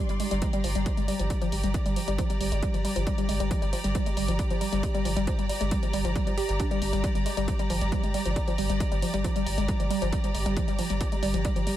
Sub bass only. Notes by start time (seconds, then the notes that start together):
0.09 G1
0.31 G1
0.64 G1
0.75 G1
0.97 G1
1.20 G1
1.52 G1
1.64 G1
1.86 G1
2.08 G1
2.40 G1
2.52 G1
2.74 G1
2.96 G1
3.29 G1
3.40 G1
3.62 G1
3.84 G1
4.17 G1
4.28 G1
4.51 G1
4.73 G1
5.05 G1
5.17 G1
5.39 G1
5.61 G1
5.93 G1
6.05 G1
6.27 G1
6.49 G1
6.82 G1
6.93 G1
7.15 G1
7.37 G1
7.70 G1
7.81 G1
8.03 G1
8.26 G1
8.58 G1
8.70 G1
8.92 G1
9.14 G1
9.46 G1
9.58 G1
9.80 G1
10.02 G1
10.35 G1
10.46 G1
10.68 G1
10.90 G1
11.23 G1
11.34 G1
11.56 G1